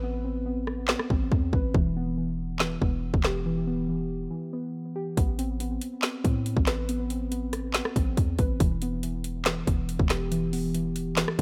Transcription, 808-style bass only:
0.00 0.95 A1 loud
1.10 1.31 A1 loud
1.32 1.52 E2 loud
1.53 1.74 A1 loud
1.74 2.78 E1 loud
2.82 3.12 E1 loud
3.14 4.28 E1 loud
5.17 5.79 A1 loud
6.25 6.55 A2 loud
6.57 7.81 A1 loud
7.96 8.17 A1 loud
8.17 8.38 E2 loud
8.39 8.59 A1 loud
8.60 9.63 E1 loud
9.67 9.98 E1 loud
9.99 11.24 E1 loud

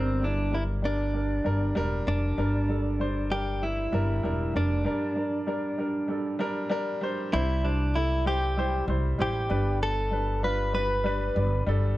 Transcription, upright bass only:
0.00 1.42 G1 medium
1.46 1.75 G1 medium
1.77 2.06 E1 medium
2.07 2.36 F1 medium
2.38 3.89 G1 medium
3.93 4.22 G1 medium
4.25 4.53 E1 medium
4.56 4.84 F1 medium
7.34 8.84 C2 medium
8.88 9.17 C2 loud
9.19 9.48 A1 medium
9.50 11.32 G1 medium
11.36 11.65 G1 medium
11.67 11.96 G1 medium

